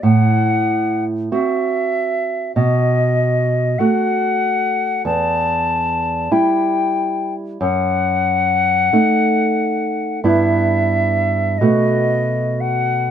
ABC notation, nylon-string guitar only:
X:1
M:6/8
L:1/8
Q:3/8=46
K:Em
V:1 name="Nylon-string guitar"
A,,3 [CF]3 | B,,3 [A,F]3 | E,,3 [G,E]3 | F,,3 [A,^D]3 |
[G,,B,E]3 [B,,A,F]3 |]